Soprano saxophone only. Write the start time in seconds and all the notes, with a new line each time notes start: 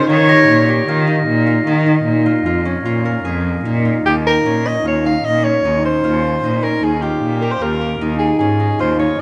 4.06 G4
4.27 A#4
4.67 D#5
4.87 C#5
5.06 F5
5.25 D#5
5.44 C#5
5.85 C5
6.63 A#4
6.83 G#4
7.02 G4
8.19 G#4
8.39 G#4
8.80 C5
8.99 C#5